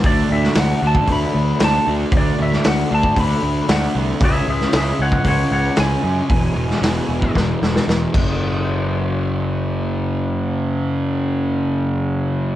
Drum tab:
CC |----------------|----------------|----------------|--------------x-|
HH |o---o---o---o---|o---o---o---o---|o---o---o---o---|o---o-----------|
SD |---oo-------o---|---oo-------o---|---oo-------o---|---oo---o-ooo---|
BD |o------oo-------|o------oo-------|o------oo-------|o------oo-----o-|

CC |----------------|----------------|
HH |----------------|----------------|
SD |----------------|----------------|
BD |----------------|----------------|